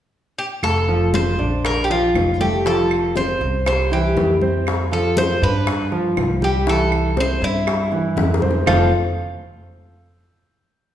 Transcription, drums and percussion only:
0.63 high bongo medium
0.63 high conga soft
0.63 claves medium
0.89 high bongo soft
0.89 high conga soft
1.14 high bongo medium
1.14 high conga medium
1.39 high bongo soft
1.65 high bongo medium
1.65 high conga soft
1.65 claves medium
1.90 high bongo soft
1.90 high conga soft
2.15 high bongo soft
2.15 low bongo medium
2.15 high conga soft
2.15 claves medium
2.41 high conga medium
2.66 high bongo medium
2.66 high conga soft
2.91 high bongo soft
2.91 high conga soft
2.91 claves medium
3.16 high bongo medium
3.16 high conga medium
3.41 high bongo soft
3.66 high bongo medium
3.66 high conga soft
3.66 claves medium
3.91 high bongo soft
3.91 high conga soft
4.17 high bongo soft
4.17 low bongo medium
4.17 high conga medium
4.41 high conga medium
4.67 high bongo medium
4.67 high conga soft
4.67 claves medium
4.91 high bongo soft
4.91 high conga soft
5.17 high bongo medium
5.17 high conga medium
5.43 high bongo soft
5.67 high bongo medium
5.67 high conga soft
5.67 claves medium
5.92 high bongo soft
5.92 high conga soft
6.17 high bongo soft
6.17 low bongo medium
6.17 high conga soft
6.17 claves medium
6.42 high conga medium
6.67 high bongo medium
6.92 high bongo soft
6.92 high conga soft
6.92 claves medium
7.17 high bongo medium
7.17 high conga medium
7.43 high bongo soft
7.67 high bongo medium
7.67 high conga soft
7.67 claves medium
7.92 high bongo soft
7.92 high conga soft
8.17 high bongo loud
8.17 high conga medium
8.34 high bongo medium
8.42 high conga medium
8.51 low bongo medium
8.67 low bongo loud
8.67 low conga medium
8.67 claves medium

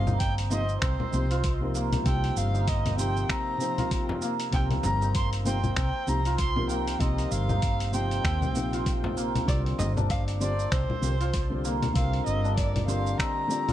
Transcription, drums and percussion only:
0.07 low conga medium
0.07 cabasa soft
0.20 kick loud
0.20 open hi-hat medium
0.20 cabasa soft
0.38 open hi-hat soft
0.38 cabasa soft
0.51 cabasa medium
0.69 cabasa soft
0.82 finger snap medium
0.82 kick loud
0.82 open hi-hat medium
0.82 cabasa soft
1.00 low conga medium
1.13 cabasa medium
1.31 open hi-hat soft
1.31 cabasa soft
1.44 kick loud
1.44 open hi-hat medium
1.44 cabasa soft
1.75 cabasa medium
1.93 open hi-hat soft
1.93 low conga medium
1.93 cabasa soft
2.06 kick loud
2.06 open hi-hat medium
2.06 cabasa soft
2.24 open hi-hat soft
2.37 cabasa medium
2.55 cabasa soft
2.68 kick loud
2.68 open hi-hat medium
2.68 cabasa soft
2.86 open hi-hat soft
2.86 low conga medium
2.86 cabasa soft
2.99 cabasa medium
3.17 cabasa soft
3.30 finger snap medium
3.30 kick loud
3.30 open hi-hat medium
3.30 cabasa soft
3.60 cabasa medium
3.78 open hi-hat soft
3.78 low conga medium
3.78 cabasa soft
3.91 kick loud
3.91 open hi-hat medium
3.91 cabasa soft
4.09 frame drum loud
4.22 cabasa medium
4.40 open hi-hat soft
4.40 cabasa soft
4.53 kick loud
4.53 open hi-hat medium
4.53 cabasa soft
4.71 open hi-hat soft
4.71 low conga medium
4.83 frame drum medium
4.83 cabasa medium
5.02 cabasa soft
5.15 kick loud
5.15 open hi-hat medium
5.15 cabasa soft
5.33 open hi-hat soft
5.33 cabasa soft
5.46 cabasa medium
5.64 low conga medium
5.64 cabasa soft
5.76 finger snap medium
5.76 kick loud
5.76 open hi-hat medium
5.76 cabasa soft
6.07 cabasa medium
6.25 open hi-hat soft
6.25 cabasa soft
6.38 kick loud
6.38 open hi-hat medium
6.38 cabasa soft
6.56 low conga medium
6.69 cabasa medium
6.88 open hi-hat soft
6.88 cabasa soft
7.01 kick loud
7.01 open hi-hat medium
7.01 cabasa soft
7.18 open hi-hat soft
7.18 cabasa soft
7.31 cabasa medium
7.49 low conga medium
7.49 cabasa soft
7.62 kick loud
7.62 open hi-hat medium
7.62 cabasa soft
7.80 open hi-hat soft
7.80 cabasa soft
7.93 cabasa medium
8.11 open hi-hat soft
8.11 cabasa soft
8.24 finger snap medium
8.24 kick loud
8.24 open hi-hat medium
8.24 cabasa soft
8.42 low conga medium
8.42 cabasa soft
8.55 cabasa medium
8.73 open hi-hat soft
8.73 cabasa soft
8.86 kick loud
8.86 open hi-hat medium
8.86 cabasa medium
9.04 frame drum loud
9.17 cabasa medium
9.36 open hi-hat soft
9.36 low conga medium
9.36 cabasa soft
9.48 kick loud
9.48 open hi-hat medium
9.48 cabasa soft
9.66 open hi-hat soft
9.79 frame drum medium
9.79 cabasa medium
9.97 low conga medium
9.97 cabasa soft
10.10 kick loud
10.10 open hi-hat medium
10.10 cabasa soft
10.28 open hi-hat soft
10.28 cabasa soft
10.41 cabasa medium
10.59 cabasa soft
10.72 finger snap medium
10.72 kick loud
10.72 open hi-hat medium
10.72 cabasa soft
10.90 low conga medium
11.03 cabasa medium
11.21 open hi-hat soft
11.21 cabasa soft
11.34 kick loud
11.34 open hi-hat medium
11.34 cabasa soft
11.65 cabasa medium
11.83 open hi-hat soft
11.83 low conga medium
11.83 cabasa soft
11.96 kick loud
11.96 open hi-hat medium
11.96 cabasa soft
12.13 open hi-hat soft
12.27 cabasa medium
12.45 cabasa soft
12.57 kick loud
12.57 open hi-hat medium
12.57 cabasa soft
12.76 open hi-hat soft
12.76 low conga medium
12.76 cabasa soft
12.89 cabasa medium
13.06 cabasa soft
13.19 finger snap medium
13.19 kick loud
13.19 open hi-hat medium
13.19 cabasa soft
13.50 cabasa medium
13.69 open hi-hat soft
13.69 low conga medium
13.69 cabasa soft

